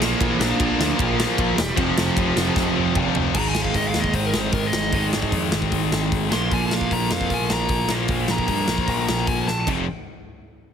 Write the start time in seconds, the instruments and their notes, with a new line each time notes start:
0.00 picked electric bass A#1, distorted electric guitar A#2 F3 A#3, snare
0.20 picked electric bass A#1, lead electric guitar E3 E4, kick, ride
0.38 picked electric bass A#1, lead electric guitar D4 D5, snare
0.56 overdriven electric guitar A#2 F3, lead electric guitar D4 D5, kick, ride
0.61 picked electric bass A#1, overdriven electric guitar A#3
0.79 picked electric bass D2, snare
0.96 picked electric bass A#1, distorted electric guitar A#2 F3, lead electric guitar F3 F4, kick, ride
1.01 distorted electric guitar A#3
1.17 distorted electric guitar A#2 F3 A#3, snare
1.38 picked electric bass A#1, kick, ride
1.56 picked electric bass E1, lead electric guitar G3 G4, snare
1.74 picked electric bass F1, distorted electric guitar F2 C3, lead electric guitar F3 F4, kick, ride
1.79 distorted electric guitar F3
1.96 picked electric bass F1, snare
2.17 picked electric bass F1, kick, ride
2.34 picked electric bass F1, overdriven electric guitar C3 F3, snare
2.39 overdriven electric guitar F2
2.56 picked electric bass F1, kick, snare
2.76 picked electric bass F1, distorted electric guitar F2 C3 F3
2.95 picked electric bass F1, distorted electric guitar F2 C3 F3, kick, mid tom
3.15 picked electric bass F1, floor tom
3.34 picked electric bass G#1, distorted electric guitar G#2 D#3 G#3, lead electric guitar A#5, kick, crash
3.49 lead electric guitar G#5
3.55 snare
3.62 lead electric guitar F5, kick
3.74 picked electric bass G#1, lead electric guitar D#5, kick, open hi-hat
3.88 lead electric guitar F5
3.94 picked electric bass D#2, snare
4.01 lead electric guitar D#5, kick
4.13 picked electric bass G#1, lead electric guitar C5, kick, open hi-hat
4.26 lead electric guitar A#4
4.34 picked electric bass G#1, snare
4.40 lead electric guitar C5
4.52 picked electric bass G#1, lead electric guitar A#4, kick, open hi-hat
4.67 lead electric guitar D#5
4.73 picked electric bass G#1, snare
4.93 picked electric bass G#1, distorted electric guitar G#2 D#3, kick, open hi-hat
4.97 distorted electric guitar G#3
5.13 picked electric bass G#1, snare
5.22 kick
5.32 picked electric bass F2, kick, open hi-hat
5.52 picked electric bass G#1, snare
5.62 kick
5.72 picked electric bass G#1, kick, open hi-hat
5.92 picked electric bass G#1, snare
6.12 picked electric bass G#1, kick, open hi-hat
6.29 distorted electric guitar A#2 F3 A#3, lead electric guitar C6, snare
6.34 picked electric bass A#1
6.51 picked electric bass A#1, lead electric guitar G#5, kick, open hi-hat
6.71 lead electric guitar F5, snare
6.81 kick
6.91 picked electric bass A#1, lead electric guitar A#5, kick, open hi-hat
7.11 picked electric bass F2, lead electric guitar F5, snare
7.21 kick
7.30 picked electric bass A#1, lead electric guitar G#5, kick, open hi-hat
7.50 picked electric bass A#1, lead electric guitar A#5, snare
7.68 picked electric bass A#1, kick, open hi-hat
7.89 picked electric bass A#1, distorted electric guitar A#2 F3, snare
7.93 distorted electric guitar A#3
8.08 picked electric bass A#1, kick, open hi-hat
8.28 picked electric bass A#1, lead electric guitar A#5, snare
8.38 kick
8.48 picked electric bass G2, kick, open hi-hat
8.67 picked electric bass A#1, snare
8.78 kick
8.88 picked electric bass A#1, kick, open hi-hat
9.07 picked electric bass A#1, lead electric guitar A#5, snare
9.27 picked electric bass A#1, lead electric guitar G#5, kick, open hi-hat
9.48 picked electric bass A#1, lead electric guitar A5, snare
9.67 picked electric bass F1, distorted electric guitar F2 C3 F3, kick, crash